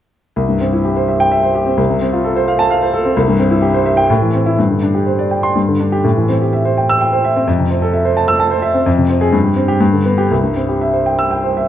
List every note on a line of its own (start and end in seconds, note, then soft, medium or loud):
0.36 1.74 C2 medium
0.49 0.68 G2 soft
0.61 0.80 C4 soft
0.73 0.92 E4 soft
0.85 1.03 G4 soft
0.96 1.15 C5 soft
1.08 1.27 E5 soft
1.20 1.39 G5 medium
1.32 1.50 E5 medium
1.43 1.62 C5 soft
1.55 1.74 G4 soft
1.66 1.78 C4 soft
1.77 3.12 C2 medium
1.89 2.08 C3 soft
2.01 2.20 C4 medium
2.13 2.31 F4 soft
2.24 2.43 A4 medium
2.36 2.55 C5 medium
2.48 2.66 F5 medium
2.59 2.78 A5 medium
2.71 2.89 F5 medium
2.82 3.01 C5 medium
2.94 3.12 A4 medium
3.05 3.17 C4 medium
3.17 4.07 C2 medium
3.28 3.46 G2 soft
3.39 3.58 C4 medium
3.50 3.69 E4 medium
3.62 3.81 G4 medium
3.74 3.93 C5 medium
3.86 4.05 E5 medium
3.97 4.09 G5 medium
4.10 4.56 A2 medium
4.22 4.41 E3 soft
4.34 4.53 C4 soft
4.46 4.58 E4 medium
4.58 5.53 G2 medium
4.70 4.89 D3 soft
4.83 5.02 D4 soft
4.95 5.14 G4 soft
5.06 5.26 C5 soft
5.19 5.39 D5 soft
5.31 5.51 G5 soft
5.43 5.56 C6 medium
5.56 6.03 G2 medium
5.68 5.88 D3 soft
5.80 6.00 D4 soft
5.92 6.05 G4 medium
6.04 7.43 A2 medium
6.17 6.36 E3 soft
6.29 6.48 C4 soft
6.42 6.61 G4 soft
6.53 6.72 E5 soft
6.65 6.84 C5 soft
6.78 6.96 G5 soft
6.89 7.08 E6 medium
7.01 7.20 G5 medium
7.13 7.31 C5 soft
7.25 7.43 E5 medium
7.36 7.48 C4 medium
7.47 8.82 F2 medium
7.59 7.77 C3 medium
7.70 7.89 C4 soft
7.82 8.01 A4 medium
7.93 8.12 E5 soft
8.05 8.24 C5 medium
8.17 8.35 A5 medium
8.28 8.47 E6 medium
8.40 8.58 A5 medium
8.51 8.70 C5 medium
8.62 8.81 E5 medium
8.74 8.86 C4 medium
8.86 9.31 F2 medium
8.98 9.16 C3 medium
9.10 9.28 C4 medium
9.21 9.33 G#4 medium
9.32 9.79 G2 medium
9.44 9.63 G3 soft
9.56 9.75 C4 medium
9.68 9.80 G4 medium
9.80 10.29 G2 medium
9.93 10.13 D3 soft
10.05 10.25 B3 soft
10.18 10.30 G4 medium
10.31 11.68 C2 medium
10.44 10.64 G2 soft
10.56 10.76 C4 soft
10.69 10.89 G4 soft
10.81 11.01 E5 soft
10.93 11.13 C5 soft
11.06 11.26 G5 soft
11.19 11.38 E6 medium
11.31 11.51 G5 soft
11.44 11.64 C5 soft
11.57 11.68 E5 soft